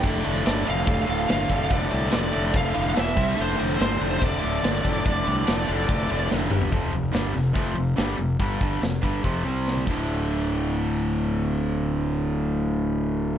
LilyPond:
<<
  \new Staff \with { instrumentName = "Lead electric guitar" } { \time 4/4 \key d \minor \tempo 4 = 144 d''4 d''8 f''4. f''4 | d''4 d''4 f''4 e''4 | c''4 c''4 d''2~ | d''2. r4 |
r1 | r1 | r1 | r1 | }
  \new Staff \with { instrumentName = "Overdriven electric guitar" } { \clef bass \time 4/4 \key d \minor <d, a, d>8 <d, a, d>8 <d, a, d>8 <d, a, d>8 <d, a, d>8 <d, a, d>8 <d, a, d>8 <d, a, d>8 | <d, a, d>8 <d, a, d>8 <d, a, d>8 <d, a, d>8 <d, a, d>8 <d, a, d>8 <e, b, e>8 <c g c'>8 | <d, a, d>8 <d, a, d>8 <d, a, d>8 <d, a, d>8 <d, a, d>8 <d, a, d>8 <d, a, d>8 <d, a, d>8 | <d, a, d>8 <d, a, d>8 <d, a, d>8 <d, a, d>8 <d, a, d>8 <d, a, d>8 <d, a, d>8 <g, d g>8 |
<f, c f>8 <f, c>8 <g, d g>8 <f, c>8 <f, c f>8 <f, c>8 <g, d g>8 <f, c>8 | <g, d g>8 <g, d g>8 <f, c>8 <g, d g>8 <f, c f>8 <c g c'>4 <d, a, d>8~ | <d, a, d>1~ | <d, a, d>1 | }
  \new Staff \with { instrumentName = "Fingered electric bass" } { \clef bass \time 4/4 \key d \minor f,,8 f,,8 g,,8 f,,8 f,,8 d,,8 g,,8 f,,8 | f,,8 c,8 f,,8 f,,8 f,,8 f,,8 e,,8 c,8 | f,,8 f,,8 g,,8 f,,8 f,,8 d,,8 g,,8 f,,8 | f,,8 c,8 f,,8 f,,8 f,,8 f,,8 f,,8 g,,8 |
f,,8 f,,8 g,,8 f,,8 f,,8 f,,8 g,,8 f,,8 | g,,8 g,,8 f,,8 g,,8 f,,8 c,4 d,,8~ | d,,1~ | d,,1 | }
  \new DrumStaff \with { instrumentName = "Drums" } \drummode { \time 4/4 <cymc bd>16 sn16 cymr8 <cymr sn>8 cymr8 <bd cymr>8 cymr8 <cymr sn>8 <bd cymr>8 | <bd cymr>16 sn16 cymr8 <cymr sn>8 cymr8 <bd cymr>8 cymr8 <cymr sn>8 <cymc bd>8 | r16 sn16 cymr8 <cymr sn>8 cymr8 <bd cymr>8 cymr8 <cymr sn>8 <bd cymr>8 | <bd cymr>8 cymr8 <cymr sn>8 cymr8 <bd cymr>8 cymr8 sn8 toml16 tomfh16 |
<hho bd>4 <hho sn>8 sn8 <hho bd>4 <hho sn>4 | <hho bd>8 bd8 <hho sn>8 bd8 <hho bd>4 sn16 tommh16 <cymc bd>8 | r4 r4 r4 r4 | r4 r4 r4 r4 | }
>>